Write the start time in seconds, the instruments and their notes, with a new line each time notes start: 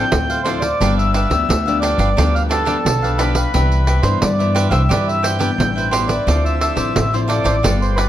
Already playing: nylon-string guitar F3 C4 E4, accordion G5
0.12 upright bass D2, nylon-string guitar A2, pandeiro
0.30 cavaquinho A4 C5 F5, pandeiro
0.44 nylon-string guitar F3 C4 E4, cavaquinho D4 A4 C5 F5, accordion C5, pandeiro
0.60 cavaquinho A4 C5 F5, accordion D5, pandeiro
0.80 upright bass G1, nylon-string guitar G2 F3 B3 D4, cavaquinho D4 G4 B4 F5, pandeiro
0.98 accordion E5, pandeiro
1.12 cavaquinho D4 G4 B4 F5, accordion E5, pandeiro
1.30 upright bass D2, nylon-string guitar F3 B3 D4, cavaquinho G4 B4, pandeiro
1.49 upright bass D2, nylon-string guitar D3, pandeiro
1.66 nylon-string guitar F3 B3 D4, cavaquinho G4 B4 F5, pandeiro
1.81 cavaquinho D4 G4 B4 F5, accordion D5, pandeiro
1.98 upright bass G1, cavaquinho D4 G4 B4 F5, pandeiro
2.17 upright bass D2, nylon-string guitar G2 F3 B3 D4, cavaquinho D4 G4 B4 F5, pandeiro
2.35 accordion F5, pandeiro
2.49 cavaquinho D4 G4 B4 F5, accordion A4, pandeiro
2.65 nylon-string guitar F3 B3 D4, cavaquinho D4 G4 B4 F5, pandeiro
2.85 upright bass B1, nylon-string guitar D3, pandeiro
3.02 cavaquinho G4 B4 F5, pandeiro
3.18 nylon-string guitar F3 B3 D4, cavaquinho D4 G4 B4 F5, accordion B4, pandeiro
3.35 cavaquinho G4 B4 F5, pandeiro
3.54 upright bass C2, nylon-string guitar C3 E3 B3 D4, cavaquinho G4 B4 E5, pandeiro
3.72 pandeiro
3.87 cavaquinho G4 B4 C5 E5, pandeiro
4.02 upright bass G2, nylon-string guitar E3 B3 D4, cavaquinho B4 C5 E5, accordion C5, pandeiro
4.22 upright bass G2, nylon-string guitar G2, accordion D5, pandeiro
4.39 nylon-string guitar E3 B3 D4, cavaquinho B4 C5 E5, pandeiro
4.55 cavaquinho G4 B4 C5 E5, pandeiro
4.70 upright bass C2, cavaquinho G4 B4 C5 E5, accordion E5 F5, pandeiro
4.89 upright bass G2, nylon-string guitar C3 E3 D4, cavaquinho G4 B4 C5 E5, accordion D5, pandeiro
5.08 accordion E5, pandeiro
5.23 cavaquinho G4 B4 C5 E5, accordion G5, pandeiro
5.39 nylon-string guitar E3 B3 D4, cavaquinho G4 B4 C5 E5, pandeiro
5.58 upright bass A1, nylon-string guitar G2, pandeiro
5.76 cavaquinho B4 C5 E5, pandeiro
5.91 nylon-string guitar E3 B3 D4, cavaquinho G4 B4 C5 E5, accordion C5, pandeiro
6.07 cavaquinho B4 C5 E5, accordion D5, pandeiro
6.26 upright bass D2, nylon-string guitar D3 F3 C4 E4, cavaquinho F4 A4 C5 D5, pandeiro
6.45 accordion E5, pandeiro
6.61 cavaquinho F4 A4 C5 D5, accordion E5, pandeiro
6.76 upright bass A1, nylon-string guitar F3 C4 E4, cavaquinho A4 C5 D5, pandeiro
6.96 upright bass A1, nylon-string guitar A2, pandeiro
7.13 nylon-string guitar F3 C4 E4, cavaquinho A4 C5 D5, accordion C5, pandeiro
7.28 cavaquinho F4 A4 C5 D5, accordion D5, pandeiro
7.44 upright bass A1, cavaquinho F4 A4 C5 D5, pandeiro
7.63 upright bass G1, nylon-string guitar G3 B3 F4 A4, cavaquinho F4 G4 B4 D5, pandeiro
7.82 accordion C5, pandeiro
7.96 cavaquinho F4 G4 B4 D5, accordion B4, pandeiro